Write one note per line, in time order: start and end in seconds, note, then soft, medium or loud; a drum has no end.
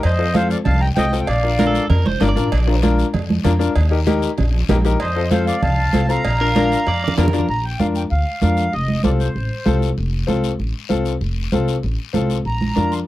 0.03 0.54 F2 medium
0.03 0.33 C5 medium
0.03 0.36 D#5 medium
0.03 cowbell loud
0.03 long guiro medium
0.19 0.24 C4 medium
0.19 0.24 F4 medium
0.19 0.25 A4 medium
0.34 0.56 C4 medium
0.34 0.56 F4 medium
0.34 0.57 A4 medium
0.34 0.50 C5 medium
0.34 0.48 F5 medium
0.34 cowbell medium
0.34 high conga medium
0.34 short guiro medium
0.49 0.58 D5 medium
0.49 0.57 F5 medium
0.49 short guiro medium
0.64 0.91 C2 loud
0.64 0.80 F5 medium
0.64 0.81 A5 loud
0.64 cowbell medium
0.64 low conga medium
0.64 long guiro medium
0.80 0.89 G5 medium
0.80 0.87 A#5 loud
0.96 1.22 C2 medium
0.96 1.02 C4 medium
0.96 1.02 F4 medium
0.96 1.03 A4 medium
0.96 1.20 D#5 medium
0.96 1.19 G5 loud
0.96 cowbell medium
0.96 high conga medium
0.96 short guiro medium
1.12 1.23 C4 medium
1.12 1.23 F4 medium
1.12 1.24 A4 medium
1.12 short guiro medium
1.20 1.28 G5 medium
1.26 1.78 A#1 medium
1.26 1.86 D5 medium
1.26 1.85 F5 medium
1.26 cowbell loud
1.26 long guiro medium
1.43 1.49 D4 medium
1.43 1.49 F4 medium
1.43 1.49 A#4 medium
1.58 1.80 D4 medium
1.58 1.81 F4 medium
1.58 1.81 A#4 medium
1.58 1.66 A#4 medium
1.58 cowbell medium
1.58 high conga medium
1.58 short guiro medium
1.67 1.90 A4 medium
1.75 short guiro medium
1.90 2.02 F2 medium
1.90 2.06 A#4 medium
1.90 cowbell medium
1.90 low conga medium
1.90 long guiro medium
2.06 2.20 F1 medium
2.06 2.22 C5 medium
2.06 high conga medium
2.20 2.35 G1 medium
2.20 2.26 D4 medium
2.20 2.26 F4 medium
2.20 2.26 A#4 medium
2.20 2.27 D5 medium
2.20 cowbell medium
2.20 high conga medium
2.20 short guiro medium
2.29 2.87 D5 loud
2.36 2.51 A1 medium
2.36 2.47 D4 medium
2.36 2.47 F4 medium
2.36 2.47 A#4 medium
2.36 short guiro medium
2.52 3.02 A#1 medium
2.52 cowbell loud
2.52 long guiro medium
2.67 2.73 D4 medium
2.67 2.73 F4 medium
2.67 2.73 A#4 medium
2.82 3.04 D4 medium
2.82 3.05 F4 medium
2.82 3.05 A#4 medium
2.82 cowbell medium
2.82 high conga medium
2.82 short guiro medium
2.99 short guiro medium
3.14 3.39 F2 loud
3.14 cowbell medium
3.14 low conga medium
3.14 long guiro medium
3.30 high conga medium
3.44 3.70 F2 medium
3.44 3.50 D4 medium
3.44 3.50 F4 medium
3.44 3.50 A#4 medium
3.44 cowbell medium
3.44 high conga medium
3.44 low conga medium
3.44 short guiro medium
3.59 3.71 D4 medium
3.59 3.71 F4 medium
3.59 3.71 A#4 medium
3.59 short guiro medium
3.76 4.26 D#2 medium
3.76 cowbell loud
3.76 long guiro medium
3.90 3.96 D#4 medium
3.90 3.97 G4 medium
3.90 3.97 A#4 medium
4.07 4.29 D#4 medium
4.07 4.29 G4 medium
4.07 4.29 A#4 loud
4.07 cowbell medium
4.07 high conga medium
4.07 short guiro medium
4.22 short guiro medium
4.38 4.63 A#1 medium
4.38 cowbell medium
4.38 low conga medium
4.38 long guiro medium
4.69 4.94 A#1 loud
4.69 4.75 D#4 medium
4.69 4.75 G4 medium
4.69 4.75 A#4 loud
4.69 cowbell medium
4.69 high conga medium
4.69 low conga medium
4.69 low timbale medium
4.69 short guiro medium
4.84 4.95 D#4 medium
4.84 4.96 G4 medium
4.84 4.96 A#4 medium
4.84 short guiro medium
5.00 5.50 F2 medium
5.00 5.29 C5 medium
5.00 5.29 D#5 medium
5.00 cowbell loud
5.00 long guiro medium
5.16 5.21 C4 medium
5.16 5.21 F4 medium
5.16 5.21 A4 medium
5.31 5.53 C4 medium
5.31 5.53 F4 medium
5.31 5.53 A4 medium
5.31 5.46 C5 medium
5.31 5.45 F5 medium
5.31 cowbell medium
5.31 high conga medium
5.31 short guiro medium
5.47 5.61 D5 medium
5.47 5.62 F5 medium
5.47 short guiro medium
5.62 5.87 C2 loud
5.62 6.06 F5 medium
5.62 6.10 A5 loud
5.62 cowbell medium
5.62 low conga medium
5.62 long guiro medium
5.93 6.18 C2 medium
5.93 5.99 C4 medium
5.93 5.99 F4 medium
5.93 5.99 A4 medium
5.93 cowbell medium
5.93 high conga medium
5.93 short guiro medium
6.09 6.20 C4 medium
6.09 6.20 F4 medium
6.09 6.20 A4 medium
6.09 7.14 F5 medium
6.09 7.14 A#5 loud
6.09 short guiro medium
6.25 6.74 A#1 medium
6.25 cowbell loud
6.25 long guiro medium
6.41 6.46 D4 medium
6.41 6.46 F4 medium
6.41 6.46 A#4 medium
6.41 6.88 A#4 medium
6.56 6.77 D4 medium
6.56 6.77 F4 medium
6.56 6.78 A#4 loud
6.56 cowbell medium
6.56 high conga medium
6.56 short guiro medium
6.72 short guiro medium
6.87 7.12 F2 medium
6.87 7.03 D5 loud
6.87 cowbell medium
6.87 long guiro medium
7.04 7.18 D5 loud
7.04 low conga loud
7.18 7.43 F2 medium
7.18 7.23 D4 medium
7.18 7.23 F4 medium
7.18 7.23 A#4 medium
7.18 7.47 A#4 medium
7.18 cowbell medium
7.18 low conga loud
7.18 low timbale medium
7.18 short guiro medium
7.28 low conga medium
7.33 7.44 D4 medium
7.33 7.44 F4 medium
7.33 7.44 A#4 medium
7.33 short guiro medium
7.39 low conga medium
7.48 7.74 A#1 medium
7.48 7.65 A#5 loud
7.48 long guiro medium
7.65 7.80 G5 medium
7.80 8.05 F2 medium
7.80 8.01 D4 medium
7.80 8.01 F4 medium
7.80 8.02 A#4 medium
7.80 7.87 F5 medium
7.80 high conga medium
7.80 short guiro medium
7.95 8.03 G5 medium
7.95 short guiro medium
8.10 8.23 D2 medium
8.10 8.40 F5 medium
8.10 long guiro medium
8.41 8.67 F2 loud
8.41 8.63 D4 medium
8.41 8.63 F4 medium
8.41 8.64 A#4 medium
8.41 8.74 F5 medium
8.41 high conga medium
8.41 short guiro medium
8.57 short guiro medium
8.73 8.98 F1 medium
8.73 9.02 D#5 medium
8.73 long guiro medium
8.88 high conga medium
9.04 9.29 C2 medium
9.04 9.26 C4 medium
9.04 9.26 F4 medium
9.04 9.26 A4 medium
9.04 9.11 D5 medium
9.04 high conga medium
9.04 short guiro medium
9.19 9.78 C5 medium
9.19 short guiro medium
9.36 9.48 A1 medium
9.36 long guiro medium
9.66 9.91 C2 loud
9.66 9.87 C4 medium
9.66 9.87 F4 medium
9.66 9.88 A4 medium
9.66 high conga medium
9.66 short guiro medium
9.82 short guiro medium
9.98 10.22 F1 medium
9.98 long guiro medium
10.27 10.53 C2 medium
10.27 10.49 C4 medium
10.27 10.50 F4 medium
10.27 10.50 A4 medium
10.27 high conga medium
10.27 short guiro medium
10.44 short guiro medium
10.59 10.72 A1 medium
10.59 long guiro medium
10.89 11.15 C2 medium
10.89 11.11 C4 medium
10.89 11.11 F4 medium
10.89 11.12 A4 medium
10.89 high conga medium
10.89 short guiro medium
11.05 short guiro medium
11.21 11.46 F1 medium
11.21 long guiro medium
11.52 11.77 C2 medium
11.52 11.74 C4 medium
11.52 11.74 F4 medium
11.52 11.74 A4 medium
11.52 high conga medium
11.52 short guiro medium
11.68 short guiro medium
11.83 11.96 A1 medium
11.83 long guiro medium
12.13 12.39 C2 medium
12.13 12.35 C4 medium
12.13 12.36 F4 medium
12.13 12.36 A4 medium
12.13 high conga medium
12.13 short guiro medium
12.30 short guiro medium
12.45 12.70 A#1 medium
12.45 12.94 A#5 medium
12.45 long guiro medium
12.61 high conga medium
12.76 13.01 F2 medium
12.76 12.98 D4 medium
12.76 12.98 F4 medium
12.76 12.98 A#4 medium
12.76 high conga medium
12.76 short guiro medium
12.92 12.99 C6 medium
12.92 short guiro medium